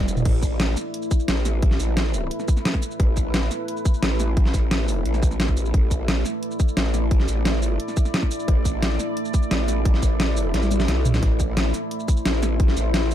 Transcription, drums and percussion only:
0.08 closed hi-hat medium
0.08 shaker medium
0.17 mid tom medium
0.17 shaker soft
0.25 kick loud
0.25 closed hi-hat loud
0.25 crash loud
0.43 kick medium
0.43 closed hi-hat medium
0.43 shaker medium
0.60 snare loud
0.60 closed hi-hat loud
0.77 snare soft
0.77 closed hi-hat medium
0.77 shaker medium
0.94 closed hi-hat loud
1.03 shaker soft
1.11 kick loud
1.11 closed hi-hat medium
1.11 shaker medium
1.20 shaker soft
1.28 snare loud
1.28 closed hi-hat loud
1.45 snare medium
1.45 closed hi-hat medium
1.45 shaker medium
1.62 kick loud
1.62 closed hi-hat medium
1.71 snare soft
1.80 closed hi-hat medium
1.80 shaker medium
1.97 snare loud
1.97 closed hi-hat medium
2.14 open hi-hat medium
2.14 shaker medium
2.31 closed hi-hat loud
2.40 snare soft
2.40 shaker soft
2.48 kick loud
2.48 closed hi-hat medium
2.48 shaker medium
2.57 snare soft
2.57 shaker soft
2.65 snare loud
2.65 closed hi-hat medium
2.74 kick medium
2.74 snare medium
2.83 closed hi-hat medium
2.83 shaker medium
2.91 shaker soft
3.00 kick loud
3.00 closed hi-hat medium
3.17 kick medium
3.17 closed hi-hat medium
3.17 shaker medium
3.34 snare loud
3.34 closed hi-hat medium
3.51 snare soft
3.51 closed hi-hat medium
3.51 shaker medium
3.68 closed hi-hat medium
3.77 shaker soft
3.85 kick loud
3.85 closed hi-hat medium
3.85 shaker medium
3.94 shaker soft
4.03 snare loud
4.03 closed hi-hat medium
4.20 snare medium
4.20 closed hi-hat medium
4.20 shaker medium
4.37 kick loud
4.37 closed hi-hat medium
4.45 snare soft
4.54 kick medium
4.54 closed hi-hat medium
4.54 shaker medium
4.71 snare loud
4.71 closed hi-hat medium
4.88 open hi-hat medium
4.88 shaker medium
5.05 closed hi-hat medium
5.14 snare soft
5.14 shaker soft
5.23 kick loud
5.23 closed hi-hat medium
5.23 shaker medium
5.31 snare soft
5.31 shaker soft
5.40 snare loud
5.40 closed hi-hat medium
5.48 kick medium
5.48 snare soft
5.57 closed hi-hat medium
5.57 shaker medium
5.65 shaker soft
5.74 kick loud
5.74 closed hi-hat medium
5.91 kick medium
5.91 closed hi-hat medium
5.91 shaker medium
6.08 snare loud
6.08 closed hi-hat medium
6.25 snare soft
6.25 closed hi-hat medium
6.25 shaker medium
6.43 closed hi-hat medium
6.51 shaker soft
6.60 kick loud
6.60 closed hi-hat medium
6.60 shaker medium
6.68 shaker soft
6.77 snare loud
6.77 closed hi-hat medium
6.94 snare medium
6.94 closed hi-hat medium
6.94 shaker medium
7.11 kick loud
7.11 closed hi-hat medium
7.20 snare soft
7.28 closed hi-hat medium
7.28 shaker medium
7.45 snare loud
7.45 closed hi-hat medium
7.63 open hi-hat medium
7.63 shaker medium
7.80 closed hi-hat medium
7.88 snare soft
7.88 shaker soft
7.97 kick loud
7.97 closed hi-hat medium
7.97 shaker medium
8.05 snare soft
8.05 shaker soft
8.14 snare loud
8.14 closed hi-hat medium
8.22 kick medium
8.22 snare soft
8.31 closed hi-hat medium
8.31 shaker medium
8.40 shaker soft
8.48 kick loud
8.48 closed hi-hat medium
8.65 kick medium
8.65 closed hi-hat medium
8.65 shaker medium
8.83 snare loud
8.83 closed hi-hat loud
9.00 snare soft
9.00 closed hi-hat medium
9.00 shaker medium
9.17 closed hi-hat loud
9.25 shaker soft
9.34 kick loud
9.34 closed hi-hat medium
9.34 shaker medium
9.43 shaker soft
9.51 snare loud
9.51 closed hi-hat medium
9.68 snare medium
9.68 closed hi-hat medium
9.68 shaker medium
9.85 kick loud
9.85 closed hi-hat loud
9.94 snare soft
10.03 kick medium
10.03 closed hi-hat medium
10.03 shaker medium
10.20 snare loud
10.20 closed hi-hat loud
10.37 open hi-hat medium
10.37 shaker medium
10.54 snare medium
10.54 closed hi-hat loud
10.63 high tom medium
10.63 shaker soft
10.71 closed hi-hat medium
10.71 high tom medium
10.71 shaker medium
10.80 snare medium
10.80 shaker soft
10.88 snare medium
10.88 closed hi-hat loud
11.05 closed hi-hat medium
11.05 mid tom loud
11.05 shaker medium
11.14 snare medium
11.14 shaker soft
11.23 kick loud
11.23 closed hi-hat medium
11.40 kick medium
11.40 closed hi-hat medium
11.40 shaker medium
11.57 snare loud
11.57 closed hi-hat loud
11.74 snare soft
11.74 closed hi-hat medium
11.74 shaker medium
11.91 closed hi-hat medium
12.00 shaker soft
12.08 kick loud
12.08 closed hi-hat medium
12.08 shaker medium
12.17 shaker soft
12.25 snare loud
12.25 closed hi-hat medium
12.43 snare medium
12.43 closed hi-hat medium
12.43 shaker medium
12.60 kick loud
12.60 closed hi-hat medium
12.68 snare soft
12.77 closed hi-hat medium
12.77 shaker medium
12.94 snare loud
12.94 closed hi-hat medium
13.11 open hi-hat medium
13.11 shaker medium

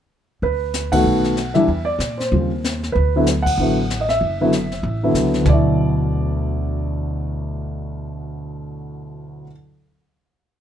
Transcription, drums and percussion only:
0.43 brush sweep soft
0.43 kick soft
0.74 snare soft
0.74 hi-hat pedal medium
0.92 kick medium
0.92 ride medium
1.05 brush sweep soft
1.24 snare soft
1.37 snare soft
1.37 hi-hat pedal soft
1.55 snare soft
1.68 brush sweep soft
1.68 kick soft
2.00 snare medium
2.00 hi-hat pedal soft
2.20 snare soft
2.32 brush sweep soft
2.32 kick soft
2.64 snare soft
2.64 hi-hat pedal soft
2.83 snare soft
2.96 brush sweep soft
2.96 kick soft
3.27 snare soft
3.27 hi-hat pedal medium
3.46 kick medium
3.46 ride medium
3.58 brush sweep soft
3.90 snare soft
3.90 hi-hat pedal soft
4.09 snare soft
4.21 brush sweep soft
4.21 kick soft
4.53 snare medium
4.53 hi-hat pedal soft
4.72 snare soft
4.83 brush sweep soft
4.83 kick soft
5.15 snare soft
5.15 hi-hat pedal soft
5.34 snare soft
5.46 kick medium
5.46 floor tom medium

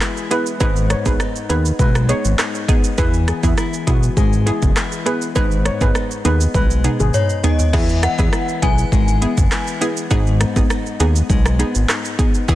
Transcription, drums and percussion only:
0.01 cross-stick loud
0.01 clap loud
0.01 shaker medium
0.17 shaker medium
0.31 closed hi-hat medium
0.31 shaker medium
0.46 shaker medium
0.61 kick loud
0.61 shaker medium
0.76 shaker medium
0.90 cross-stick loud
0.90 closed hi-hat medium
0.90 shaker medium
1.06 kick loud
1.06 shaker medium
1.20 cross-stick loud
1.20 shaker medium
1.36 shaker soft
1.50 closed hi-hat medium
1.50 shaker medium
1.66 shaker medium
1.79 kick loud
1.79 shaker medium
1.95 cross-stick loud
1.95 shaker medium
2.09 closed hi-hat medium
2.09 shaker soft
2.25 shaker medium
2.39 cross-stick loud
2.39 clap loud
2.39 shaker medium
2.55 shaker medium
2.69 kick loud
2.69 closed hi-hat medium
2.69 shaker medium
2.84 shaker medium
2.98 kick loud
2.98 shaker medium
3.14 shaker medium
3.28 cross-stick loud
3.28 closed hi-hat medium
3.28 shaker medium
3.43 kick loud
3.43 shaker medium
3.58 cross-stick loud
3.58 shaker medium
3.73 shaker soft
3.87 kick medium
3.87 closed hi-hat medium
3.87 shaker medium
4.03 shaker medium
4.17 kick loud
4.17 shaker medium
4.33 shaker medium
4.47 closed hi-hat medium
4.47 shaker soft
4.62 kick loud
4.62 shaker medium
4.76 cross-stick loud
4.76 clap loud
4.76 shaker medium
4.92 shaker medium
5.06 closed hi-hat medium
5.06 shaker medium
5.22 shaker medium
5.36 kick loud
5.36 shaker medium
5.51 shaker medium
5.65 cross-stick loud
5.65 closed hi-hat medium
5.65 shaker medium
5.81 kick loud
5.81 shaker medium
5.95 cross-stick loud
5.95 shaker medium
6.11 shaker soft
6.25 closed hi-hat medium
6.25 shaker medium
6.41 shaker medium
6.54 kick loud
6.54 high tom medium
6.54 shaker medium
6.71 shaker medium
6.84 closed hi-hat medium
6.84 mid tom medium
6.84 shaker medium
7.00 mid tom medium
7.00 shaker medium
7.14 mid tom loud
7.14 shaker medium
7.30 shaker medium
7.44 closed hi-hat medium
7.44 floor tom loud
7.44 shaker medium
7.59 floor tom loud
7.59 shaker medium
7.73 kick loud
7.73 crash medium
7.89 shaker medium
8.03 cross-stick loud
8.03 closed hi-hat medium
8.03 shaker medium
8.19 kick loud
8.19 shaker medium
8.33 cross-stick loud
8.33 shaker medium
8.49 shaker soft
8.62 kick medium
8.62 closed hi-hat medium
8.62 shaker medium
8.78 shaker medium
8.92 kick loud
8.92 shaker medium
9.08 shaker medium
9.22 closed hi-hat medium
9.22 shaker medium
9.38 kick loud
9.38 shaker medium
9.52 cross-stick loud
9.52 clap loud
9.52 shaker medium
9.67 shaker medium
9.82 closed hi-hat medium
9.82 shaker medium
9.97 shaker medium
10.11 kick loud
10.11 shaker medium
10.27 shaker medium
10.41 cross-stick loud
10.41 closed hi-hat medium
10.41 shaker medium
10.56 kick loud
10.56 shaker medium
10.70 cross-stick loud
10.70 shaker medium
10.86 shaker soft
11.00 closed hi-hat medium
11.00 shaker medium
11.16 shaker medium
11.30 kick loud
11.30 shaker medium
11.46 cross-stick loud
11.46 shaker medium
11.60 closed hi-hat medium
11.60 shaker medium
11.75 shaker medium
11.89 cross-stick loud
11.89 clap loud
11.89 shaker medium
12.05 shaker medium
12.19 kick loud
12.19 closed hi-hat medium
12.19 shaker medium
12.34 shaker medium
12.48 kick loud
12.48 shaker medium

